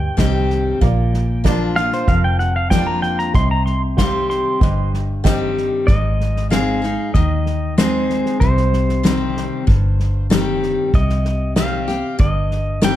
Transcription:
Already playing: G2 G5
0.17 C2 D#3 G3 C4 G4 C5 D#5, kick, snare, hi-hat pedal
0.50 snare
0.81 A#1 A#2 F4 A#4 D5, kick, snare
1.14 snare
1.44 F3 A#3 D4 F4 A#4 D5, kick, snare, hi-hat pedal
1.76 D4 F4 F5, snare
1.92 C5, snare
2.07 F1 F2 F4 A#4 F5, kick, snare
2.24 G5
2.39 F#5, snare
2.56 F5
2.70 F3 A#3 D4 F4 A#4 D5 G5, kick, snare, hi-hat pedal
2.75 F4
2.87 A#5
3.02 G5, snare
3.19 A#5, snare
3.34 C2 C3 G4 C5 D#5 C6, kick, snare
3.51 A#5
3.66 C6, snare
3.97 D#3 G3 C4 G4 C5 F5 C6, kick, snare, hi-hat pedal
4.01 G4
4.30 C6, snare
4.60 G1 G2 G4 C5 D#5, kick, snare
4.94 snare
5.24 D#3 G3 C4 G4 C5 D#5, kick, snare, hi-hat pedal
5.57 snare
5.87 G#1 G#2 D#5, kick, snare
6.20 snare
6.36 snare
6.50 G#3 C4 D#4 G#4 F5, snare, hi-hat pedal
6.82 D#4 G#4, snare
7.14 D#2 D#3 D#5, kick, snare
7.46 snare
7.78 G#3 C4 D#4 G#4 C5, snare, hi-hat pedal
8.10 snare
8.26 snare
8.40 C2 C3 C5, kick, snare
8.57 snare
8.73 snare
8.89 snare
9.03 D#3 G3 C4 G4, snare, hi-hat pedal
9.37 snare
9.67 G1 G2, kick, snare
10.00 snare
10.30 D#3 G3 C4 G4, snare, hi-hat pedal
10.63 snare
10.94 C2 C3 D#5, kick, snare
11.10 snare
11.25 snare
11.56 D#3 G3 C4 G4 F5, snare, hi-hat pedal
11.88 C4 G4, snare
12.19 G1 G2 D#5, kick, snare
12.51 snare
12.82 D#3 G3 C4 G4 G5, snare, hi-hat pedal

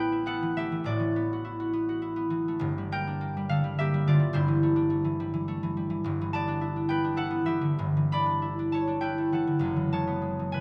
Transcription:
Already playing: A1 A2 E3 A3 B3 E4 A4 B4 C5 E5 A5
0.00 G5
0.12 E4
0.26 B3 A4 F#5
0.43 E3
0.57 A3 G4 E5
0.72 E3
0.84 A1 A2 F#4 D5
1.00 E3
1.16 B3
1.33 F#4
1.45 E4
1.60 F#4
1.73 B3
1.89 F#4
2.02 E4
2.16 B3
2.30 E3
2.48 A3
2.59 G1 G2
2.78 G3
2.92 A#3 A#4 G5
3.07 D4
3.21 A#3
3.37 G3
3.49 D3 A4 F5
3.64 G3
3.79 A#3 G4 E5
3.94 G3
4.07 D3 F4 D5
4.19 G3
4.33 G1 G2 E4 C5
4.48 E3
4.63 A3
4.76 D4
4.90 A3
5.04 E3
5.20 G3
5.34 E3
5.48 A3
5.63 E3
5.77 G3
5.90 E3
6.04 G1 G2
6.21 E3
6.33 B3 D5 A5
6.48 D4
6.61 E4
6.76 D4
6.89 B3 B4 G5
7.04 D4
7.17 E4 A4 F#5
7.31 B3
7.45 E3 G4 E5
7.61 D3
7.79 G1 G2
7.97 E3
8.12 A3 D5 B5
8.26 D4
8.42 E4
8.59 D4
8.72 A3 C#5 A5
8.87 D4
9.01 E4 B4 G5
9.18 A3
9.32 E3 A4 F#5
9.47 D3
9.59 F#1 F#2
9.76 E3
9.93 G#3 C#5 A5
10.07 B3
10.22 G#3
10.39 E3
10.52 C#3 B4 G#5

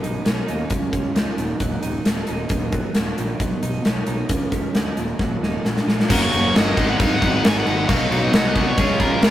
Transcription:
Already playing: B2
0.03 B1 D#4, closed hi-hat
0.25 B1 C#4, snare, closed hi-hat
0.47 D#2 D#4, closed hi-hat
0.69 C#2 C#3, kick, closed hi-hat
0.92 C#2 C#4, kick, closed hi-hat
1.15 C#2 D#4, snare, closed hi-hat
1.38 D#1 D#2, closed hi-hat
1.60 D#1 F#3, kick, closed hi-hat
1.82 D#1 D#4, closed hi-hat
2.05 D#1 A#3, snare, closed hi-hat
2.27 D#1 D#4, closed hi-hat
2.49 D#1 D#2, kick, closed hi-hat
2.72 F#3, kick, closed hi-hat
2.95 D#1 A#3, snare, closed hi-hat
3.18 A#1 D#3, closed hi-hat
3.40 B1 B2, kick, closed hi-hat
3.63 B1 D#4, closed hi-hat
3.85 B1 C#4, snare, closed hi-hat
4.07 B1 D#4, closed hi-hat
4.29 C#2 C#3, kick, closed hi-hat
4.52 C#2 C#4, kick, closed hi-hat
4.74 D2 D#4, snare, closed hi-hat
4.97 D#1 D#2, closed hi-hat
5.19 D#1 F#3, kick, snare
5.41 D#1 D#4, snare
5.65 A#1 A#2, snare
5.77 snare
5.87 A#1 F4, snare
6.00 snare
6.09 F#1 F#2 C#3 F#3 A#3 C#4 F#4 A#4, kick, crash
6.22 C#5
6.31 F#1 F#3 A#3 C#4 F#4, crash
6.54 G1 F#3 A#3 C#4 F#4 D#5, snare, crash
6.76 G#1 G#2 D#3 G#3 B3 D#4, kick, crash
6.91 F#5
7.00 G#1 D#3 G#3 B3 D#4 F5, kick, crash
7.14 F#5
7.22 G#1 G#3 B3 D#4, kick, crash
7.44 G#1 G#2 D#3 G#3 B3 D#4 G#5, snare, crash
7.56 F#5
7.66 G#1 G#3 B3 D#4, crash
7.88 B1 B2 F#3 B3 D#4 F#4 F5, kick, crash
8.11 B1 B3 D#4 F#4, crash
8.24 D#5
8.33 C2 F#3 B3 D#4 F#4, snare, crash
8.48 D#5
8.55 B2 F#3 B3 D#4 F#4, kick, crash
8.68 C#5
8.78 C#2 C#3 G#3 C#4 F4 G#4, kick, crash
8.99 C#2 C#4 F4 G#4 A#4, kick, crash
9.21 C#2 C#3 G#3 C#4 F4 G#4, snare, crash

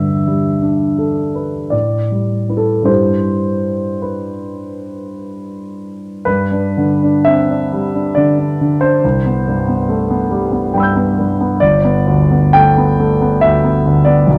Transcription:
Already playing: G2 D3 E5
0.27 G3
0.62 D4
0.98 A4
1.35 B4
1.70 A2 D5
2.12 G3
2.49 E4 B4
2.57 A4
2.83 G2 G3 D4 E4 G4 C5
4.02 B4
6.25 G2 B4
6.52 D4
6.77 D3
7.03 D4
7.25 C4 E5
7.50 D4
7.73 G3
7.94 D4
8.15 D3 D5
8.39 D4
8.61 D3
8.81 D4 C5
9.04 C2
9.26 B3
9.48 G2
9.68 B3
9.89 A3
10.11 B3
10.31 G3
10.52 B3
10.74 G2 G5 B5
10.80 E6 G6
10.96 B3
11.18 G2
11.41 B3
11.60 G1 D5
11.85 B3
12.07 D2
12.31 B3
12.53 A3 G5
12.77 B3
13.00 A3
13.22 B3
13.41 D2 E5
13.64 B3
13.86 D2
14.05 B3 D5
14.27 B1

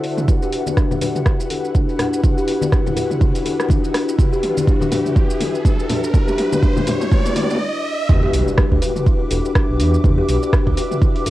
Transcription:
Already playing: D3 D4 E4 F#4 A4 C5 E5 F#5
0.04 D5, open hi-hat, shaker
0.18 mid tom, shaker
0.28 D4 E4 F#4 G4 B4 F#5, kick, mid tom, riser, shaker
0.42 G4, shaker
0.53 open hi-hat, shaker
0.67 D5, high conga, shaker
0.77 D4, kick, cross-stick, mid tom, shaker
0.91 B4, high conga, low conga, shaker
1.01 D4 F#4 G4 B4, open hi-hat, high conga, low conga, shaker
1.15 mid tom, shaker
1.26 E4, kick, cross-stick, mid tom, shaker
1.40 E4, shaker
1.50 A4, open hi-hat, high conga, shaker
1.65 shaker
1.75 D4, kick, mid tom, shaker
1.89 shaker
1.99 D4, cross-stick, open hi-hat, low conga, shaker
2.13 shaker
2.24 D4 E4 F#4 G4 B4, kick, mid tom, shaker
2.38 G4, shaker
2.48 open hi-hat, shaker
2.62 D5, high conga, shaker
2.72 D4, kick, cross-stick, mid tom, shaker
2.86 B4, high conga, low conga, shaker
2.96 D4 F#4 G4 B4, open hi-hat, low conga, shaker
3.11 mid tom, shaker
3.21 E4, kick, mid tom, high conga, shaker
3.35 E4, open hi-hat, shaker
3.45 A4, open hi-hat, high conga, shaker
3.60 cross-stick, shaker
3.69 D4, kick, mid tom, high conga, shaker
3.84 shaker
3.94 D4, cross-stick, open hi-hat, shaker
4.09 shaker
4.18 D4 E4 F#4 G4 B4 E5, kick, mid tom, shaker
4.32 G4, shaker
4.43 open hi-hat, mid tom, shaker
4.57 D5, high conga, shaker
4.67 D4, kick, mid tom, shaker
4.81 B4, high conga, low conga, shaker
4.91 D4 F#4 G4 B4, open hi-hat, mid tom, high conga, low conga, shaker
5.06 mid tom, shaker
5.16 E4, kick, mid tom, shaker
5.30 E4, shaker
5.40 A4, open hi-hat, mid tom, high conga, shaker
5.55 shaker
5.65 D4, kick, mid tom, shaker
5.79 shaker
5.89 D4, open hi-hat, mid tom, low conga, shaker
6.04 shaker
6.14 D4 E4 F#4 G4 B4, kick, mid tom, shaker
6.28 G4, mid tom, shaker
6.38 open hi-hat, mid tom, shaker
6.52 D5, mid tom, high conga, shaker
6.62 D4, kick, mid tom, shaker
6.76 B4, mid tom, high conga, low conga, shaker
6.87 D4 F#4 G4 B4, open hi-hat, mid tom, low conga, shaker
7.01 mid tom, shaker
7.11 E4, kick, mid tom, high conga, shaker
7.18 mid tom
7.25 E4, open hi-hat, mid tom, shaker
7.31 mid tom
7.36 E4, open hi-hat, mid tom, high conga, shaker
7.43 mid tom
7.50 mid tom, shaker
7.55 mid tom
8.09 E2 D4 E4 F#4 G4 B4 E5 D6, kick, mid tom, impact, shaker
8.23 G4
8.33 B1, open hi-hat, shaker
8.47 D5, shaker
8.58 D4, kick, cross-stick, shaker
8.72 D2 B4, kick
8.82 D4 F#4 G4 B4, open hi-hat, shaker
8.96 mid tom, shaker
9.06 E4, kick, shaker
9.20 E4
9.31 E1 A4, open hi-hat, shaker
9.45 shaker
9.55 D4, kick, cross-stick, shaker
9.69 B1
9.80 E2 D4, open hi-hat, shaker
9.94 shaker
10.04 E2 D4 E4 F#4 G4 B4, kick, mid tom, shaker
10.18 G4
10.29 B1, open hi-hat, shaker
10.42 D5, shaker
10.53 D4, kick, cross-stick, shaker
10.67 D2 B4, kick
10.77 D4 F#4 G4 B4, open hi-hat, shaker
10.91 mid tom, shaker
11.02 E4, kick, mid tom, shaker
11.16 E4, open hi-hat
11.26 E1 A4, open hi-hat, shaker

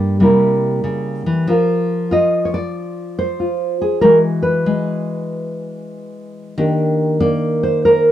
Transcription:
Already playing: G2 G3 A#3 F4 A#4
0.20 C3 G3 A#3 E4 A#4
0.84 C#3
1.26 E3
1.47 F3 F4 A#4 F5
2.11 F4 D#5
2.45 C#5
2.54 D5
3.19 C5
3.40 F4
3.82 G#4
4.01 E3 G#3 F#4 A#4
4.43 B4
4.66 G#3
6.58 D#3 A#3 D4 G4
7.20 A#3 D5
7.63 C5
7.85 A#4

